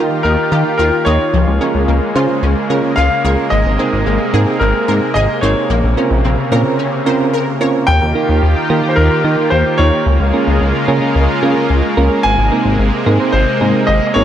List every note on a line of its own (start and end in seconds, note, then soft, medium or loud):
0.00 1.32 D#3 medium
0.00 7.84 A#3 medium
0.00 0.19 D#4 medium
0.00 0.16 F4 medium
0.00 0.19 F4 medium
0.00 3.48 F4 medium
0.00 0.19 G4 medium
0.00 1.32 G4 medium
0.00 0.19 A#4 loud
0.00 0.20 D#5 loud
0.23 0.36 D#2 loud
0.23 0.43 D#4 medium
0.23 0.76 A#4 medium
0.52 0.64 D#3 loud
0.52 0.74 D#4 medium
0.52 0.74 F4 medium
0.52 0.74 G4 medium
0.52 0.70 G4 medium
0.52 0.74 A#4 medium
0.78 0.91 D#2 loud
0.78 0.97 F4 loud
0.78 1.04 A#4 medium
1.05 1.18 D#2 loud
1.05 1.28 D#4 medium
1.05 1.28 F4 medium
1.05 1.28 G4 medium
1.05 1.28 A#4 medium
1.05 3.02 C#5 medium
1.05 1.25 D#5 medium
1.33 1.46 C#2 loud
1.33 3.50 C#3 medium
1.33 1.52 F3 medium
1.33 5.66 G#3 medium
1.47 1.59 C#2 loud
1.61 1.83 C#4 medium
1.61 1.79 C#4 medium
1.61 1.83 F4 medium
1.61 1.83 G#4 medium
1.61 1.83 A#4 medium
1.75 1.86 C#2 medium
1.88 2.00 C#2 loud
1.88 2.07 A#3 medium
2.15 2.27 C#3 medium
2.15 2.38 C#4 medium
2.15 2.38 F4 medium
2.15 2.34 F4 medium
2.15 2.38 G#4 medium
2.15 2.38 C5 loud
2.43 2.55 C#2 loud
2.43 2.61 C#4 medium
2.70 2.82 C#3 loud
2.70 2.92 C#4 medium
2.70 2.92 F4 medium
2.70 2.92 G#4 medium
2.70 2.92 A#4 loud
2.70 2.88 A#4 medium
2.96 3.09 C#2 loud
2.96 3.16 F4 medium
2.96 3.47 F5 loud
3.25 3.36 C#2 medium
3.25 3.47 C#4 medium
3.25 3.47 F4 medium
3.25 3.47 G#4 medium
3.25 3.47 A#4 medium
3.25 3.43 C#5 medium
3.50 3.64 G#1 loud
3.50 5.68 C3 medium
3.50 3.70 G#3 medium
3.50 4.63 D#5 loud
3.66 3.77 G#1 loud
3.79 4.01 C4 medium
3.79 3.98 C4 medium
3.79 4.01 D#4 medium
3.79 4.01 G#4 medium
3.79 4.01 A#4 medium
3.93 4.05 G#1 loud
4.06 4.18 G#1 loud
4.06 4.25 A#3 medium
4.34 4.46 G#2 loud
4.34 4.56 C4 medium
4.34 4.56 D#4 medium
4.34 4.56 G#4 medium
4.34 4.52 G#4 medium
4.34 4.56 A#4 loud
4.59 4.73 G#1 loud
4.59 4.79 C4 medium
4.59 5.16 A#4 medium
4.88 5.00 G#2 loud
4.88 5.10 C4 medium
4.88 5.10 D#4 medium
4.88 5.10 G#4 medium
4.88 5.07 A#4 medium
4.88 5.10 A#4 medium
5.14 5.27 G#1 loud
5.14 5.34 G#4 loud
5.14 5.43 D#5 medium
5.41 5.55 G#1 loud
5.41 5.65 C4 medium
5.41 5.65 D#4 medium
5.41 5.65 G#4 medium
5.41 5.65 A#4 medium
5.41 5.61 C5 medium
5.41 7.56 C#5 medium
5.70 5.82 A#1 loud
5.70 7.86 C3 medium
5.70 7.86 C#3 medium
5.70 5.88 A#3 medium
5.84 5.96 A#1 loud
5.97 6.19 C4 medium
5.97 6.19 C#4 medium
5.97 6.16 C#4 medium
5.97 6.19 F4 medium
5.97 6.19 A#4 medium
6.11 6.23 A#1 loud
6.25 6.36 A#1 loud
6.25 6.43 C4 medium
6.52 6.64 A#2 loud
6.52 6.74 C4 medium
6.52 6.74 C#4 medium
6.52 6.74 F4 medium
6.52 6.70 A#4 loud
6.52 6.74 A#4 loud
6.79 6.97 C#4 medium
7.06 7.28 C4 medium
7.06 7.28 C#4 medium
7.06 7.28 F4 medium
7.06 7.28 A#4 loud
7.06 7.25 C5 medium
7.33 7.52 A#4 loud
7.61 7.83 C4 medium
7.61 7.83 C#4 medium
7.61 7.83 F4 medium
7.61 7.83 A#4 loud
7.61 7.79 C#5 medium
7.87 8.00 D#2 loud
7.87 10.04 D#3 medium
7.87 14.24 A#3 medium
7.87 10.04 F4 medium
7.87 10.04 G4 medium
7.87 8.93 G5 loud
8.02 8.14 D#2 loud
8.15 8.37 A#3 medium
8.15 8.37 D#4 medium
8.15 8.37 F4 medium
8.15 8.37 G4 medium
8.15 8.37 A#4 medium
8.29 8.41 D#2 loud
8.43 8.55 D#2 loud
8.70 8.82 D#3 loud
8.70 8.81 A#3 medium
8.70 8.81 D#4 medium
8.70 8.81 F4 medium
8.70 8.81 G4 medium
8.70 8.81 A#4 loud
8.83 9.06 A#3 medium
8.83 9.06 D#4 medium
8.83 9.06 F4 medium
8.83 9.06 G4 medium
8.83 9.06 A#4 medium
8.89 8.97 C5 medium
8.96 9.09 D#2 loud
8.96 9.53 A#4 medium
9.24 9.36 D#3 loud
9.24 9.47 A#3 medium
9.24 9.47 D#4 medium
9.24 9.47 F4 medium
9.24 9.47 G4 medium
9.24 9.47 A#4 medium
9.50 9.64 D#2 loud
9.50 9.79 C5 medium
9.78 9.91 D#2 loud
9.78 10.01 A#3 medium
9.78 10.01 D#4 medium
9.78 10.01 F4 medium
9.78 10.01 G4 medium
9.78 10.01 A#4 medium
9.78 10.83 C#5 loud
10.06 10.18 C#2 loud
10.06 12.22 C#3 medium
10.06 12.22 G#3 medium
10.06 12.22 F4 medium
10.20 10.32 C#2 loud
10.33 10.56 A#3 medium
10.33 10.56 C#4 medium
10.33 10.56 F4 medium
10.33 10.56 G#4 medium
10.33 10.56 A#4 medium
10.47 10.59 C#2 loud
10.61 10.73 C#2 loud
10.88 11.00 C#3 loud
10.88 10.99 A#3 medium
10.88 10.99 C#4 medium
10.88 10.99 F4 medium
10.88 10.99 G#4 medium
10.88 10.99 A#4 loud
11.02 11.24 A#3 medium
11.02 11.24 C#4 medium
11.02 11.24 F4 medium
11.02 11.24 G#4 medium
11.02 11.24 A#4 medium
11.16 11.27 C#2 loud
11.43 11.55 C#3 loud
11.43 11.65 A#3 medium
11.43 11.65 C#4 medium
11.43 11.65 F4 medium
11.43 11.65 G#4 medium
11.43 11.65 A#4 loud
11.70 11.82 C#2 loud
11.97 12.09 C#2 loud
11.97 12.19 A#3 medium
11.97 12.19 C#4 medium
11.97 12.19 F4 medium
11.97 12.19 G#4 medium
11.97 12.19 A#4 loud
12.23 12.36 G#1 loud
12.23 14.24 C3 medium
12.23 14.24 G#3 medium
12.23 13.36 G#5 loud
12.38 12.50 G#1 loud
12.52 12.74 A#3 medium
12.52 12.74 C4 medium
12.52 12.74 D#4 medium
12.52 12.74 G#4 medium
12.52 12.74 A#4 medium
12.65 12.77 G#1 loud
12.79 12.91 G#1 loud
13.06 13.18 G#2 loud
13.06 13.17 A#3 loud
13.06 13.17 C4 medium
13.06 13.17 D#4 medium
13.06 13.17 G#4 medium
13.06 13.17 A#4 loud
13.20 13.42 A#3 medium
13.20 13.42 C4 medium
13.20 13.42 D#4 medium
13.20 13.42 G#4 medium
13.20 13.42 C5 medium
13.32 13.46 G#1 loud
13.32 13.89 C5 loud
13.61 13.73 G#2 loud
13.61 13.83 A#3 medium
13.61 13.83 C4 medium
13.61 13.83 D#4 medium
13.61 13.83 G#4 medium
13.61 13.83 A#4 medium
13.87 14.00 G#1 loud
13.87 14.05 D#5 loud
14.07 14.15 D#5 medium
14.14 14.24 G#1 loud
14.14 14.24 A#3 medium
14.14 14.24 C4 medium
14.14 14.24 D#4 medium
14.14 14.24 G#4 medium
14.14 14.24 A#4 medium
14.14 14.24 C#5 medium